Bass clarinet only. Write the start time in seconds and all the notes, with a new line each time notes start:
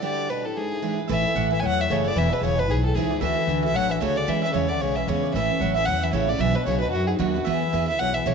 0.03 D3
0.30 B2
0.45 A2
0.58 G#2
1.09 E3
1.51 E3
1.62 F#3
1.89 C#3
2.15 E3
2.30 B2
2.41 C#3
2.56 B2
2.68 G#2
2.84 A2
2.95 G#2
3.21 E3
3.75 F#3
3.90 E3
4.01 C#3
4.28 E3
4.52 C#3
4.69 D3
4.82 C#3
4.98 E3
5.09 C#3
5.35 E3
5.62 F#3
5.76 E3
5.87 F#3
5.99 E3 F#3
6.13 C#3
6.38 E3 F#3
6.55 B2
6.67 C#3
6.81 B2
6.94 F#2
7.05 G#2 A2
7.20 F#2
7.48 E3
7.99 F#3
8.15 E3
8.26 C#3